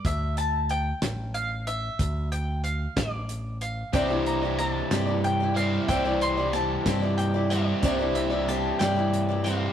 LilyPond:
<<
  \new Staff \with { instrumentName = "Mandolin" } { \time 6/8 \key c \mixolydian \tempo 4. = 62 e''8 a''8 g''4 f''8 e''8~ | e''8 g''8 f''8 d''4 f''8 | g''8 bes''8 a''4 g''8 f''8 | g''8 c'''8 a''4 g''8 d''8~ |
d''8 e''8 a''8 g''4 f''8 | }
  \new Staff \with { instrumentName = "Upright piano" } { \time 6/8 \key c \mixolydian r2. | r2. | <d' c'' d''>2. | <e' c'' d''>2. |
<d' c'' d''>2. | }
  \new Staff \with { instrumentName = "Steel-string acoustic guitar" } { \time 6/8 \key c \mixolydian r2. | r2. | <c' e' g' d''>16 <e' g' d''>8 <e' g' d''>16 <c' e' g' d''>8 <c' e' g' d''>16 <e' g' d''>8 <e' g' d''>16 <c' g' d''>8 | <c' e' g' d''>16 <e' g' d''>8 <e' g' d''>16 <c' e' g' d''>8 <c' e' g' d''>16 <e' g' d''>8 <e' g' d''>16 <c' e' g' d''>8 |
<c' e' g' d''>16 <e' g' d''>8 <e' g' d''>16 <c' e' g' d''>8 <c' e' g' d''>16 <e' g' d''>8 <e' g' d''>16 <c' g' d''>8 | }
  \new Staff \with { instrumentName = "Overdriven electric guitar" } { \clef bass \time 6/8 \key c \mixolydian r2. | r2. | <c e g c' e'>2~ <c e g c' e'>8 <c e g c' e'>8 | <c e g c' e'>2~ <c e g c' e'>8 <c e g c' e'>8 |
<c e g c' e'>2~ <c e g c' e'>8 <c e g c' e'>8 | }
  \new Staff \with { instrumentName = "Picked electric bass" } { \clef bass \time 6/8 \key c \mixolydian d,4. a,,4. | d,4. a,,4. | c,4. g,4. | c,4. g,4. |
c,4. g,4. | }
  \new DrumStaff \with { instrumentName = "Drums" } \drummode { \time 6/8 <hh bd>8 hh8 hh8 <hh sn>8 hh8 hh8 | <hh bd>8 hh8 hh8 <hh bd sn>8 hh8 hh8 | <hh bd>8 hh8 hh8 <hh sn>8 hh8 hh8 | <hh bd>8 hh8 hh8 <hh bd sn>8 hh8 hh8 |
<hh bd>8 hh8 hh8 <hh sn>8 hh8 hh8 | }
>>